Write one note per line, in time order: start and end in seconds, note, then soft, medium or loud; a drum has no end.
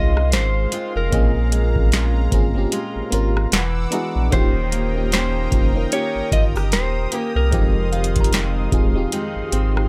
0.00 0.34 C2 medium
0.00 0.54 G#3 medium
0.00 0.72 G#3 medium
0.00 4.29 G#3 medium
0.00 1.12 C4 medium
0.00 1.12 C#4 medium
0.00 1.15 D#4 medium
0.00 0.73 F4 medium
0.00 1.13 F4 medium
0.00 1.14 G#4 medium
0.00 1.15 A#4 medium
0.00 0.33 D#5 loud
0.00 3.48 F5 medium
0.00 1.09 C6 medium
0.17 cross-stick medium
0.32 0.67 G#1 loud
0.32 0.92 C5 loud
0.32 snare loud
0.32 closed hi-hat medium
0.72 1.52 G#3 medium
0.72 1.22 C4 medium
0.72 1.93 F4 medium
0.72 closed hi-hat medium
0.96 1.10 F1 medium
0.96 2.52 A#4 medium
1.11 2.28 A#1 loud
1.11 3.62 A#2 medium
1.11 2.02 A#3 loud
1.11 2.03 C4 medium
1.11 2.03 C#4 loud
1.11 2.04 F4 loud
1.11 2.04 G#4 loud
1.11 2.91 D#5 medium
1.11 3.50 A#5 medium
1.11 kick loud
1.11 closed hi-hat medium
1.52 1.92 G#3 medium
1.52 closed hi-hat medium
1.76 kick loud
1.92 2.71 G#3 medium
1.92 2.72 C#4 medium
1.92 2.72 F4 medium
1.92 snare loud
1.92 closed hi-hat medium
2.31 2.66 G1 loud
2.31 2.49 A#3 medium
2.31 2.49 C4 medium
2.31 2.50 C#4 medium
2.31 2.50 F4 medium
2.31 2.51 G#4 loud
2.31 kick loud
2.31 closed hi-hat medium
2.54 2.99 A#3 medium
2.54 2.99 C4 medium
2.54 3.00 C#4 medium
2.54 3.00 F4 medium
2.54 3.01 G4 loud
2.72 3.62 G#3 medium
2.72 3.62 C#4 medium
2.72 3.11 F4 medium
2.72 closed hi-hat medium
2.96 3.02 G#1 soft
3.11 3.47 G#1 loud
3.11 3.52 A#3 loud
3.11 3.52 C4 medium
3.11 3.53 C#4 medium
3.11 3.62 F4 medium
3.11 3.53 F4 medium
3.11 3.53 A#4 loud
3.11 closed hi-hat medium
3.37 cross-stick medium
3.52 3.87 E1 loud
3.52 4.32 E3 medium
3.52 4.32 F#5 medium
3.52 3.90 F#5 medium
3.52 4.32 D6 medium
3.52 4.31 E6 medium
3.52 snare loud
3.52 closed hi-hat medium
3.91 4.42 G#3 medium
3.91 4.23 B3 medium
3.91 4.23 D4 medium
3.91 4.42 D4 medium
3.91 4.24 E4 medium
3.91 4.24 F#4 medium
3.91 4.42 F#4 medium
3.91 4.25 G#4 medium
3.91 4.30 A#5 medium
3.91 closed hi-hat medium
4.16 4.30 A#1 medium
4.31 5.48 D#1 loud
4.31 7.55 D#3 medium
4.31 4.77 A#3 loud
4.31 4.77 C#4 medium
4.31 4.78 D#4 medium
4.31 4.78 F4 medium
4.31 4.79 G4 loud
4.31 7.49 A#4 medium
4.31 5.12 C5 loud
4.31 7.49 G5 medium
4.31 7.49 A#5 medium
4.31 9.88 D#6 medium
4.31 kick loud
4.31 closed hi-hat medium
4.72 5.11 A#3 medium
4.72 closed hi-hat medium
4.94 5.39 A#3 medium
4.94 5.39 C#4 medium
4.94 5.40 D#4 medium
4.94 5.40 F4 medium
4.94 5.41 G4 medium
5.12 5.91 A#3 medium
5.12 5.92 C#4 medium
5.12 5.93 G4 medium
5.12 5.92 C5 loud
5.12 snare loud
5.12 closed hi-hat medium
5.51 5.86 F1 medium
5.51 5.69 A#3 medium
5.51 5.69 C#4 medium
5.51 5.70 D#4 medium
5.51 5.70 F4 medium
5.51 5.71 A#4 medium
5.51 kick loud
5.51 closed hi-hat medium
5.73 6.93 A#3 medium
5.73 6.94 C#4 medium
5.73 6.94 D#4 medium
5.73 6.95 F4 medium
5.73 6.95 A#4 medium
5.92 7.11 A#3 medium
5.92 7.12 C#4 medium
5.92 6.32 G4 medium
5.92 6.33 C#5 loud
5.92 closed hi-hat medium
6.15 6.22 G1 soft
6.32 6.74 G1 medium
6.32 6.56 F4 medium
6.32 6.44 D#5 loud
6.32 kick medium
6.32 closed hi-hat medium
6.56 7.12 G4 medium
6.56 cross-stick medium
6.72 7.07 D#1 loud
6.72 7.18 C5 loud
6.72 snare loud
6.72 closed hi-hat medium
7.12 7.62 A#3 medium
7.12 7.62 C#4 medium
7.12 7.62 G4 medium
7.12 closed hi-hat medium
7.18 7.32 A#4 loud
7.36 7.54 C2 loud
7.36 8.92 A#4 medium
7.51 8.69 F1 medium
7.51 9.88 F2 medium
7.51 8.42 G#3 loud
7.51 9.88 G#3 medium
7.51 8.43 C4 medium
7.51 8.43 D#4 medium
7.51 8.44 F4 medium
7.51 8.44 G4 loud
7.51 9.88 F5 medium
7.51 9.88 C6 medium
7.51 kick loud
7.51 closed hi-hat medium
7.92 8.31 D#3 medium
7.92 9.71 F5 medium
7.92 closed hi-hat soft
8.04 closed hi-hat medium
8.16 kick loud
8.16 closed hi-hat medium
8.21 9.88 A#5 medium
8.21 closed hi-hat medium
8.32 9.11 D#3 medium
8.32 9.12 G#3 medium
8.32 9.13 C4 medium
8.32 snare loud
8.32 closed hi-hat medium
8.71 9.07 D#1 medium
8.71 8.89 G#3 medium
8.71 8.89 C4 medium
8.71 8.90 D#4 medium
8.71 8.90 F4 medium
8.71 8.91 G#4 loud
8.71 kick loud
8.71 closed hi-hat medium
8.94 9.39 G#3 medium
8.94 9.39 C4 medium
8.94 9.40 D#4 medium
8.94 9.40 F4 medium
8.94 9.40 G4 loud
9.12 9.88 D#3 medium
9.12 9.88 G#3 medium
9.12 9.52 C4 medium
9.12 closed hi-hat medium
9.36 9.42 G#1 soft
9.52 9.87 G#1 loud
9.52 9.88 C4 medium
9.52 closed hi-hat medium
9.76 9.88 G4 medium
9.76 9.88 C5 medium
9.76 cross-stick medium